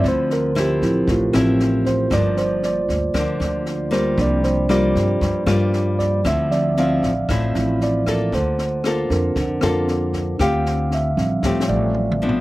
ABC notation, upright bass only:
X:1
M:4/4
L:1/8
Q:1/4=116
K:Dm
V:1 name="Upright bass" clef=bass
D,,3 A,,, A,,, A,,,3 | G,,,3 D,, D,, D,,3 | C,,3 G,, G,, G,,3 | D,,3 A,,, A,,, A,,,3 |
D,,3 F,, F,, F,,3 | D,,3 A,,, A,,, A,,,3 |]